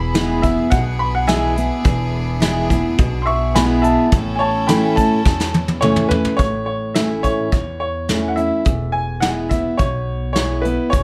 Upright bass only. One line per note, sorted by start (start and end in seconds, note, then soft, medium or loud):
0.00 0.55 E1 medium
0.72 1.68 B1 medium
1.85 2.82 E1 medium
2.98 3.95 B1 medium
4.12 5.09 A1 medium
5.25 6.22 E2 medium
6.39 7.36 A1 medium
7.52 8.49 E2 medium
8.66 9.63 E1 medium
9.79 10.76 B1 medium
10.93 11.03 E1 medium